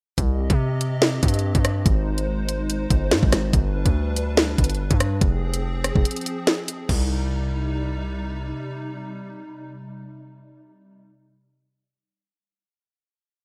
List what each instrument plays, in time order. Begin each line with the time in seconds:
0.18 808-style bass C2, analog synth pad C4 G4 D#5, kick, closed hi-hat
0.50 808-style bass C3, kick, closed hi-hat
0.81 closed hi-hat
1.02 snare
1.23 808-style bass G2, kick, closed hi-hat
1.28 closed hi-hat
1.34 closed hi-hat
1.39 closed hi-hat
1.55 808-style bass G2, kick, closed hi-hat
1.65 cross-stick, closed hi-hat
1.86 808-style bass G#1, analog synth pad G#3 D#4 C5, kick, closed hi-hat
2.18 closed hi-hat
2.49 closed hi-hat
2.70 closed hi-hat
2.90 808-style bass G1, kick, closed hi-hat
3.11 808-style bass G#2, snare
3.23 808-style bass G#1, kick
3.32 808-style bass G#1, cross-stick, snare, closed hi-hat
3.53 808-style bass G1, analog synth pad G3 D4 B4, kick, closed hi-hat
3.86 808-style bass D2, kick, closed hi-hat
4.16 closed hi-hat
4.37 snare
4.58 808-style bass G1, kick, closed hi-hat
4.64 closed hi-hat
4.70 closed hi-hat
4.75 closed hi-hat
4.91 808-style bass G2, kick, closed hi-hat
5.00 cross-stick, closed hi-hat
5.21 808-style bass F1, analog synth pad F3 C4 G#4, kick, closed hi-hat
5.54 closed hi-hat
5.84 cross-stick, closed hi-hat
5.95 808-style bass F1, kick
6.05 closed hi-hat
6.11 closed hi-hat
6.16 closed hi-hat
6.21 closed hi-hat
6.26 closed hi-hat
6.47 snare
6.68 closed hi-hat
6.89 808-style bass C2, analog synth pad C3 G3 D#4, kick, crash